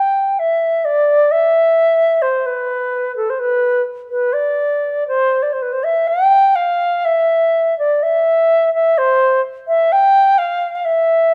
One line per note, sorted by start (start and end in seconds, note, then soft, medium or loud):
0.00 0.41 G5 medium
0.39 0.86 E5 medium
0.85 1.33 D5 medium
1.31 2.23 E5 medium
2.22 2.47 C5 medium
2.46 3.15 B4 medium
3.16 3.31 A4 medium
3.30 3.41 C5 soft
3.39 3.82 B4 medium
4.10 4.34 B4 medium
4.33 5.07 D5 medium
5.08 5.44 C5 medium
5.42 5.54 D5 medium
5.53 5.64 C5 medium
5.62 5.74 B4 soft
5.72 5.85 C5 medium
5.84 6.09 E5 medium
6.07 6.57 G5 medium
6.55 7.06 F5 medium
7.05 7.77 E5 medium
7.79 8.04 D5 medium
8.03 8.73 E5 medium
8.74 8.99 E5 medium
8.98 9.41 C5 medium
9.67 9.94 E5 medium
9.92 10.40 G5 medium
10.38 10.75 F5 medium
10.75 10.86 F5 medium
10.85 11.34 E5 medium